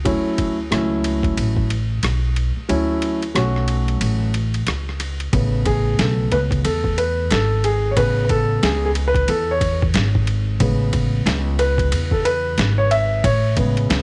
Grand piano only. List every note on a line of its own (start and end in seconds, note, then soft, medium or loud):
0.05 0.56 F#3 medium
0.05 0.56 A3 medium
0.05 0.57 C#4 medium
0.05 0.57 E4 medium
0.71 1.67 F#3 medium
0.71 1.68 A3 medium
0.71 1.68 C#4 medium
0.71 1.68 E4 medium
2.69 3.20 F#3 medium
2.69 3.20 A3 medium
2.69 3.20 C#4 medium
2.69 3.21 E4 medium
3.35 4.31 F#3 medium
3.35 4.31 A3 medium
3.35 4.32 C#4 medium
3.35 4.32 F#4 medium
5.32 6.30 C#3 medium
5.32 7.93 A3 medium
5.32 6.31 B3 medium
5.66 6.00 G#4 medium
5.99 6.33 A4 medium
6.32 6.61 C#3 soft
6.32 6.62 G#3 soft
6.32 6.62 B3 medium
6.32 6.39 B4 medium
6.65 6.99 A4 medium
6.98 7.32 B4 medium
7.31 7.65 A4 medium
7.64 7.90 G#4 medium
7.91 7.97 C#5 medium
7.96 8.92 C#3 medium
7.96 8.92 B3 medium
7.96 8.62 G#4 medium
7.96 8.23 B4 medium
8.24 8.30 B4 medium
8.30 8.61 A4 medium
8.63 8.84 G#4 medium
8.85 8.90 G#4 medium
9.08 9.28 B4 loud
9.29 9.50 A4 medium
9.51 9.82 C#5 medium
10.60 13.20 C#3 medium
10.60 13.20 G#3 medium
10.60 13.20 B3 medium
11.59 12.14 B4 loud
12.12 12.26 A4 medium
12.25 12.74 B4 loud
12.78 12.92 C#5 medium
12.91 13.22 E5 loud
13.24 13.55 C#5 medium
13.56 14.02 C#3 medium
13.56 14.02 G#3 medium
13.56 14.02 B3 medium